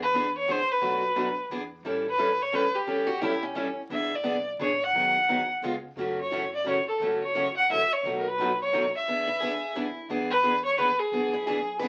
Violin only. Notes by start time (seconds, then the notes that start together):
0.02 B4
0.38 C#5
0.51 C5
0.71 B4
2.10 B4
2.42 C#5
2.55 B4
2.74 G4
3.93 E5
4.15 D5
4.62 C#5
4.83 F#5
6.20 C#5
6.56 D5
6.70 C#5
6.89 A4
7.23 C#5
7.57 F#5
7.72 E5
7.92 C#5
8.19 A#4
8.28 B4
8.62 C#5
8.97 E5
10.30 B4
10.65 C#5
10.79 B4
10.99 G#4